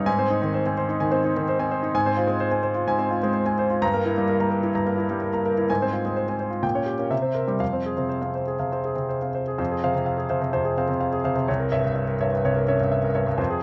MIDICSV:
0, 0, Header, 1, 2, 480
1, 0, Start_track
1, 0, Key_signature, -4, "minor"
1, 0, Tempo, 469484
1, 70, Time_signature, 4, 2, 24, 8
1, 6788, Tempo, 492611
1, 9668, Tempo, 474684
1, 13746, End_track
2, 0, Start_track
2, 0, Title_t, "Grand piano"
2, 0, Program_c, 0, 0
2, 0, Control_c, 0, 64, 127
2, 62, Note_on_c, 0, 44, 67
2, 63, Note_on_c, 0, 80, 79
2, 85, Control_c, 0, 64, 0
2, 189, Note_on_c, 0, 60, 51
2, 191, Note_on_c, 0, 72, 56
2, 239, Control_c, 0, 64, 127
2, 261, Note_off_c, 0, 80, 0
2, 308, Note_on_c, 0, 63, 53
2, 384, Note_off_c, 0, 60, 0
2, 385, Note_off_c, 0, 72, 0
2, 429, Note_on_c, 0, 60, 51
2, 433, Note_on_c, 0, 51, 55
2, 504, Note_off_c, 0, 63, 0
2, 553, Note_on_c, 0, 72, 57
2, 625, Note_off_c, 0, 60, 0
2, 627, Note_off_c, 0, 51, 0
2, 677, Note_on_c, 0, 60, 47
2, 679, Note_on_c, 0, 80, 50
2, 747, Note_off_c, 0, 72, 0
2, 793, Note_on_c, 0, 72, 56
2, 868, Note_off_c, 0, 60, 0
2, 869, Note_off_c, 0, 80, 0
2, 909, Note_on_c, 0, 63, 56
2, 985, Note_off_c, 0, 72, 0
2, 1001, Note_off_c, 0, 44, 0
2, 1025, Note_on_c, 0, 51, 58
2, 1025, Note_on_c, 0, 80, 63
2, 1102, Note_off_c, 0, 63, 0
2, 1138, Note_on_c, 0, 72, 58
2, 1140, Note_on_c, 0, 60, 53
2, 1220, Note_off_c, 0, 51, 0
2, 1220, Note_off_c, 0, 80, 0
2, 1270, Note_on_c, 0, 63, 58
2, 1336, Note_off_c, 0, 72, 0
2, 1337, Note_off_c, 0, 60, 0
2, 1396, Note_on_c, 0, 60, 53
2, 1397, Note_on_c, 0, 51, 53
2, 1461, Note_off_c, 0, 63, 0
2, 1518, Note_on_c, 0, 72, 61
2, 1584, Note_off_c, 0, 51, 0
2, 1584, Note_off_c, 0, 60, 0
2, 1630, Note_on_c, 0, 80, 59
2, 1631, Note_on_c, 0, 60, 51
2, 1705, Note_off_c, 0, 72, 0
2, 1753, Note_on_c, 0, 72, 58
2, 1821, Note_off_c, 0, 60, 0
2, 1821, Note_off_c, 0, 80, 0
2, 1867, Note_on_c, 0, 63, 58
2, 1942, Note_off_c, 0, 72, 0
2, 1988, Note_off_c, 0, 63, 0
2, 1988, Note_on_c, 0, 44, 70
2, 1991, Note_on_c, 0, 80, 78
2, 2007, Control_c, 0, 64, 0
2, 2108, Note_on_c, 0, 60, 55
2, 2108, Note_on_c, 0, 72, 60
2, 2144, Control_c, 0, 64, 127
2, 2180, Note_off_c, 0, 80, 0
2, 2218, Note_on_c, 0, 65, 60
2, 2297, Note_off_c, 0, 60, 0
2, 2297, Note_off_c, 0, 72, 0
2, 2325, Note_on_c, 0, 56, 56
2, 2325, Note_on_c, 0, 60, 51
2, 2411, Note_off_c, 0, 65, 0
2, 2457, Note_on_c, 0, 72, 61
2, 2523, Note_off_c, 0, 56, 0
2, 2523, Note_off_c, 0, 60, 0
2, 2568, Note_on_c, 0, 60, 49
2, 2570, Note_on_c, 0, 80, 53
2, 2648, Note_off_c, 0, 72, 0
2, 2687, Note_on_c, 0, 72, 53
2, 2765, Note_off_c, 0, 60, 0
2, 2765, Note_off_c, 0, 80, 0
2, 2812, Note_on_c, 0, 65, 55
2, 2885, Note_off_c, 0, 72, 0
2, 2911, Note_off_c, 0, 44, 0
2, 2938, Note_on_c, 0, 44, 60
2, 2941, Note_on_c, 0, 80, 67
2, 3009, Note_off_c, 0, 65, 0
2, 3052, Note_on_c, 0, 72, 57
2, 3056, Note_on_c, 0, 60, 50
2, 3134, Note_off_c, 0, 80, 0
2, 3177, Note_on_c, 0, 65, 57
2, 3250, Note_off_c, 0, 72, 0
2, 3252, Note_off_c, 0, 60, 0
2, 3304, Note_on_c, 0, 60, 58
2, 3305, Note_on_c, 0, 56, 56
2, 3372, Note_off_c, 0, 65, 0
2, 3412, Note_on_c, 0, 72, 55
2, 3496, Note_off_c, 0, 60, 0
2, 3497, Note_off_c, 0, 56, 0
2, 3532, Note_on_c, 0, 60, 49
2, 3539, Note_on_c, 0, 80, 56
2, 3610, Note_off_c, 0, 72, 0
2, 3669, Note_on_c, 0, 72, 57
2, 3732, Note_off_c, 0, 60, 0
2, 3735, Note_off_c, 0, 80, 0
2, 3788, Note_on_c, 0, 65, 53
2, 3860, Note_off_c, 0, 72, 0
2, 3877, Note_off_c, 0, 44, 0
2, 3905, Note_on_c, 0, 43, 65
2, 3905, Note_on_c, 0, 82, 79
2, 3908, Note_off_c, 0, 65, 0
2, 3925, Control_c, 0, 64, 0
2, 4025, Note_on_c, 0, 70, 58
2, 4027, Note_on_c, 0, 58, 52
2, 4076, Control_c, 0, 64, 127
2, 4098, Note_off_c, 0, 82, 0
2, 4147, Note_on_c, 0, 64, 53
2, 4216, Note_off_c, 0, 70, 0
2, 4218, Note_off_c, 0, 58, 0
2, 4272, Note_on_c, 0, 55, 53
2, 4272, Note_on_c, 0, 58, 48
2, 4337, Note_off_c, 0, 64, 0
2, 4387, Note_on_c, 0, 70, 56
2, 4458, Note_off_c, 0, 55, 0
2, 4459, Note_off_c, 0, 58, 0
2, 4499, Note_on_c, 0, 58, 49
2, 4502, Note_on_c, 0, 82, 49
2, 4576, Note_off_c, 0, 70, 0
2, 4607, Note_on_c, 0, 70, 52
2, 4692, Note_off_c, 0, 58, 0
2, 4693, Note_off_c, 0, 82, 0
2, 4737, Note_on_c, 0, 64, 51
2, 4805, Note_off_c, 0, 70, 0
2, 4831, Note_off_c, 0, 43, 0
2, 4856, Note_on_c, 0, 43, 57
2, 4858, Note_on_c, 0, 82, 53
2, 4930, Note_off_c, 0, 64, 0
2, 4971, Note_on_c, 0, 58, 49
2, 4975, Note_on_c, 0, 70, 51
2, 5050, Note_off_c, 0, 82, 0
2, 5088, Note_on_c, 0, 64, 54
2, 5165, Note_off_c, 0, 58, 0
2, 5168, Note_off_c, 0, 70, 0
2, 5210, Note_on_c, 0, 58, 49
2, 5212, Note_on_c, 0, 55, 51
2, 5284, Note_off_c, 0, 64, 0
2, 5336, Note_on_c, 0, 70, 49
2, 5406, Note_off_c, 0, 58, 0
2, 5407, Note_off_c, 0, 55, 0
2, 5451, Note_on_c, 0, 58, 45
2, 5454, Note_on_c, 0, 82, 49
2, 5530, Note_off_c, 0, 70, 0
2, 5579, Note_on_c, 0, 70, 55
2, 5649, Note_off_c, 0, 58, 0
2, 5651, Note_off_c, 0, 82, 0
2, 5703, Note_on_c, 0, 64, 49
2, 5775, Note_off_c, 0, 70, 0
2, 5793, Note_off_c, 0, 43, 0
2, 5825, Note_off_c, 0, 64, 0
2, 5825, Note_on_c, 0, 80, 67
2, 5828, Note_on_c, 0, 44, 58
2, 5841, Control_c, 0, 64, 0
2, 5952, Note_on_c, 0, 60, 49
2, 5953, Note_on_c, 0, 72, 52
2, 5982, Control_c, 0, 64, 127
2, 6018, Note_off_c, 0, 80, 0
2, 6062, Note_on_c, 0, 65, 47
2, 6141, Note_off_c, 0, 60, 0
2, 6141, Note_off_c, 0, 72, 0
2, 6187, Note_on_c, 0, 56, 44
2, 6188, Note_on_c, 0, 60, 40
2, 6255, Note_off_c, 0, 65, 0
2, 6302, Note_on_c, 0, 72, 53
2, 6377, Note_off_c, 0, 56, 0
2, 6378, Note_off_c, 0, 60, 0
2, 6428, Note_on_c, 0, 60, 39
2, 6428, Note_on_c, 0, 80, 44
2, 6495, Note_off_c, 0, 72, 0
2, 6542, Note_on_c, 0, 72, 42
2, 6618, Note_off_c, 0, 60, 0
2, 6618, Note_off_c, 0, 80, 0
2, 6649, Note_on_c, 0, 65, 43
2, 6736, Note_off_c, 0, 72, 0
2, 6759, Note_off_c, 0, 44, 0
2, 6774, Note_on_c, 0, 46, 52
2, 6778, Note_off_c, 0, 65, 0
2, 6778, Note_on_c, 0, 79, 59
2, 6805, Control_c, 0, 64, 0
2, 6893, Note_on_c, 0, 61, 41
2, 6897, Note_on_c, 0, 73, 45
2, 6951, Control_c, 0, 64, 127
2, 6969, Note_off_c, 0, 79, 0
2, 7002, Note_on_c, 0, 67, 43
2, 7085, Note_off_c, 0, 61, 0
2, 7087, Note_off_c, 0, 73, 0
2, 7131, Note_on_c, 0, 61, 43
2, 7132, Note_on_c, 0, 58, 41
2, 7199, Note_off_c, 0, 67, 0
2, 7235, Note_off_c, 0, 46, 0
2, 7241, Note_on_c, 0, 48, 51
2, 7244, Note_on_c, 0, 76, 57
2, 7252, Note_off_c, 0, 61, 0
2, 7253, Note_off_c, 0, 58, 0
2, 7273, Control_c, 0, 64, 0
2, 7354, Note_on_c, 0, 72, 39
2, 7356, Note_on_c, 0, 60, 40
2, 7426, Control_c, 0, 64, 127
2, 7440, Note_off_c, 0, 76, 0
2, 7477, Note_on_c, 0, 70, 46
2, 7556, Note_off_c, 0, 72, 0
2, 7557, Note_off_c, 0, 60, 0
2, 7601, Note_on_c, 0, 60, 40
2, 7604, Note_on_c, 0, 55, 46
2, 7678, Note_off_c, 0, 70, 0
2, 7713, Note_off_c, 0, 48, 0
2, 7722, Note_on_c, 0, 41, 46
2, 7725, Note_on_c, 0, 77, 61
2, 7729, Note_off_c, 0, 60, 0
2, 7730, Note_off_c, 0, 55, 0
2, 7755, Control_c, 0, 64, 0
2, 7849, Note_on_c, 0, 60, 37
2, 7852, Note_on_c, 0, 72, 42
2, 7903, Control_c, 0, 64, 127
2, 7924, Note_off_c, 0, 77, 0
2, 7977, Note_on_c, 0, 68, 40
2, 8046, Note_off_c, 0, 60, 0
2, 8047, Note_off_c, 0, 72, 0
2, 8085, Note_on_c, 0, 48, 36
2, 8090, Note_on_c, 0, 60, 36
2, 8170, Note_off_c, 0, 68, 0
2, 8204, Note_on_c, 0, 72, 44
2, 8285, Note_off_c, 0, 48, 0
2, 8287, Note_off_c, 0, 60, 0
2, 8326, Note_on_c, 0, 60, 33
2, 8326, Note_on_c, 0, 77, 39
2, 8405, Note_off_c, 0, 72, 0
2, 8456, Note_on_c, 0, 72, 38
2, 8525, Note_off_c, 0, 60, 0
2, 8526, Note_off_c, 0, 77, 0
2, 8577, Note_on_c, 0, 68, 39
2, 8650, Note_off_c, 0, 72, 0
2, 8665, Note_off_c, 0, 41, 0
2, 8693, Note_on_c, 0, 48, 40
2, 8693, Note_on_c, 0, 77, 43
2, 8771, Note_off_c, 0, 68, 0
2, 8817, Note_on_c, 0, 60, 37
2, 8817, Note_on_c, 0, 72, 39
2, 8889, Note_off_c, 0, 48, 0
2, 8889, Note_off_c, 0, 77, 0
2, 8941, Note_on_c, 0, 68, 41
2, 9011, Note_off_c, 0, 60, 0
2, 9011, Note_off_c, 0, 72, 0
2, 9049, Note_on_c, 0, 60, 36
2, 9052, Note_on_c, 0, 48, 39
2, 9134, Note_off_c, 0, 68, 0
2, 9177, Note_on_c, 0, 72, 39
2, 9249, Note_off_c, 0, 60, 0
2, 9250, Note_off_c, 0, 48, 0
2, 9302, Note_on_c, 0, 77, 38
2, 9306, Note_on_c, 0, 60, 32
2, 9374, Note_off_c, 0, 72, 0
2, 9426, Note_on_c, 0, 72, 40
2, 9498, Note_off_c, 0, 77, 0
2, 9499, Note_off_c, 0, 60, 0
2, 9552, Note_on_c, 0, 68, 41
2, 9618, Note_off_c, 0, 72, 0
2, 9658, Note_on_c, 0, 41, 61
2, 9659, Note_on_c, 0, 72, 49
2, 9668, Note_off_c, 0, 68, 0
2, 9684, Control_c, 0, 64, 0
2, 9789, Note_on_c, 0, 68, 50
2, 9827, Control_c, 0, 64, 127
2, 9855, Note_off_c, 0, 72, 0
2, 9912, Note_on_c, 0, 72, 49
2, 9914, Note_on_c, 0, 48, 49
2, 9915, Note_on_c, 0, 77, 70
2, 9979, Note_off_c, 0, 68, 0
2, 10013, Note_off_c, 0, 48, 0
2, 10016, Note_off_c, 0, 72, 0
2, 10018, Note_off_c, 0, 77, 0
2, 10028, Note_on_c, 0, 48, 46
2, 10141, Note_on_c, 0, 77, 53
2, 10217, Note_off_c, 0, 48, 0
2, 10253, Note_on_c, 0, 68, 46
2, 10332, Note_off_c, 0, 77, 0
2, 10378, Note_on_c, 0, 48, 46
2, 10378, Note_on_c, 0, 72, 49
2, 10383, Note_on_c, 0, 77, 49
2, 10448, Note_off_c, 0, 68, 0
2, 10483, Note_off_c, 0, 48, 0
2, 10487, Note_off_c, 0, 72, 0
2, 10490, Note_off_c, 0, 77, 0
2, 10499, Note_on_c, 0, 48, 51
2, 10587, Note_off_c, 0, 41, 0
2, 10614, Note_on_c, 0, 72, 55
2, 10615, Note_on_c, 0, 41, 55
2, 10690, Note_off_c, 0, 48, 0
2, 10731, Note_on_c, 0, 68, 50
2, 10808, Note_off_c, 0, 72, 0
2, 10862, Note_on_c, 0, 60, 46
2, 10864, Note_on_c, 0, 72, 47
2, 10864, Note_on_c, 0, 77, 51
2, 10927, Note_off_c, 0, 68, 0
2, 10970, Note_off_c, 0, 72, 0
2, 10970, Note_off_c, 0, 77, 0
2, 10975, Note_on_c, 0, 48, 51
2, 11095, Note_on_c, 0, 77, 55
2, 11169, Note_off_c, 0, 48, 0
2, 11216, Note_on_c, 0, 68, 49
2, 11245, Note_off_c, 0, 60, 0
2, 11289, Note_off_c, 0, 77, 0
2, 11334, Note_on_c, 0, 48, 53
2, 11337, Note_on_c, 0, 72, 52
2, 11342, Note_on_c, 0, 77, 58
2, 11409, Note_off_c, 0, 68, 0
2, 11434, Note_off_c, 0, 48, 0
2, 11445, Note_off_c, 0, 72, 0
2, 11448, Note_off_c, 0, 77, 0
2, 11449, Note_on_c, 0, 48, 54
2, 11547, Note_off_c, 0, 41, 0
2, 11574, Note_off_c, 0, 48, 0
2, 11574, Note_on_c, 0, 73, 54
2, 11579, Note_on_c, 0, 36, 65
2, 11594, Control_c, 0, 64, 0
2, 11694, Note_on_c, 0, 70, 51
2, 11767, Control_c, 0, 64, 127
2, 11768, Note_off_c, 0, 73, 0
2, 11815, Note_on_c, 0, 73, 49
2, 11816, Note_on_c, 0, 43, 47
2, 11816, Note_on_c, 0, 76, 67
2, 11888, Note_off_c, 0, 70, 0
2, 11924, Note_off_c, 0, 73, 0
2, 11925, Note_off_c, 0, 76, 0
2, 11929, Note_off_c, 0, 43, 0
2, 11944, Note_on_c, 0, 43, 50
2, 12055, Note_on_c, 0, 76, 52
2, 12133, Note_off_c, 0, 43, 0
2, 12180, Note_on_c, 0, 70, 47
2, 12249, Note_off_c, 0, 76, 0
2, 12304, Note_on_c, 0, 43, 46
2, 12308, Note_on_c, 0, 73, 50
2, 12309, Note_on_c, 0, 76, 54
2, 12371, Note_off_c, 0, 70, 0
2, 12412, Note_off_c, 0, 73, 0
2, 12413, Note_off_c, 0, 43, 0
2, 12413, Note_off_c, 0, 76, 0
2, 12428, Note_on_c, 0, 43, 49
2, 12511, Note_off_c, 0, 36, 0
2, 12551, Note_on_c, 0, 36, 58
2, 12555, Note_on_c, 0, 73, 57
2, 12617, Note_off_c, 0, 43, 0
2, 12670, Note_on_c, 0, 70, 51
2, 12741, Note_off_c, 0, 73, 0
2, 12787, Note_on_c, 0, 61, 46
2, 12789, Note_on_c, 0, 73, 49
2, 12791, Note_on_c, 0, 76, 58
2, 12859, Note_off_c, 0, 70, 0
2, 12895, Note_off_c, 0, 73, 0
2, 12896, Note_off_c, 0, 76, 0
2, 12911, Note_on_c, 0, 43, 52
2, 13026, Note_on_c, 0, 76, 53
2, 13100, Note_off_c, 0, 43, 0
2, 13150, Note_on_c, 0, 70, 48
2, 13172, Note_off_c, 0, 61, 0
2, 13218, Note_off_c, 0, 76, 0
2, 13259, Note_on_c, 0, 73, 51
2, 13261, Note_on_c, 0, 43, 49
2, 13262, Note_on_c, 0, 76, 55
2, 13341, Note_off_c, 0, 70, 0
2, 13366, Note_off_c, 0, 43, 0
2, 13371, Note_off_c, 0, 73, 0
2, 13372, Note_off_c, 0, 76, 0
2, 13381, Note_on_c, 0, 43, 58
2, 13484, Note_off_c, 0, 36, 0
2, 13492, Note_on_c, 0, 72, 54
2, 13494, Note_on_c, 0, 41, 63
2, 13504, Note_off_c, 0, 43, 0
2, 13525, Control_c, 0, 64, 0
2, 13620, Note_on_c, 0, 68, 53
2, 13691, Note_off_c, 0, 72, 0
2, 13698, Control_c, 0, 64, 127
2, 13746, Note_off_c, 0, 41, 0
2, 13746, Note_off_c, 0, 68, 0
2, 13746, End_track
0, 0, End_of_file